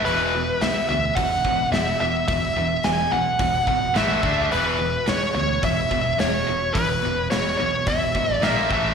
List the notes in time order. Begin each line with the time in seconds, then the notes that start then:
0.05 E1 E2 B2 E3 B4, open hi-hat
0.33 E2 B2
0.61 B1 E2 B2 E5, snare, open hi-hat
0.88 D2 E2 B2 E5
1.15 E1 E2 B2 F#5, kick, open hi-hat
1.45 E1 E2 B2, kick
1.71 E1 E2 B2 E5, snare, open hi-hat
2.00 E1 E2 B2 E5
2.28 E1 E2 B2 E5, kick, open hi-hat
2.56 E1 E2 B2
2.83 E1 E2 B2 G#5, snare, open hi-hat
3.12 B1 E2 B2 F#5
3.39 E1 E2 B2, kick, open hi-hat
3.67 E1 E2 B2 F#5, kick
3.95 A1 A2 E3 A3 E5, snare, open hi-hat
4.23 D2 D3 A3 D4, kick
4.52 E1 E2 B2 E3 B4, open hi-hat
4.79 E2 B2
5.07 B1 E2 B2 C#5, snare, open hi-hat
5.35 D2 E2 B2 C#5
5.62 E1 E2 B2 E5, kick, open hi-hat
5.91 E1 E2 B2, kick
6.19 E1 E2 B2 C#5, snare, open hi-hat
6.47 E1 E2 B2
6.73 E1 E2 B2 B4, kick, open hi-hat
7.02 E1 E2 B2
7.30 E1 E2 B2 C#5, snare, open hi-hat
7.58 B1 E2 B2 C#5
7.86 E1 E2 B2 E5, kick, open hi-hat
8.14 A1 E2 B2, kick
8.33 D5
8.41 A#1 A#2 F3 A#3 E5, snare, open hi-hat
8.69 A1 A2 E3 A3 E5, kick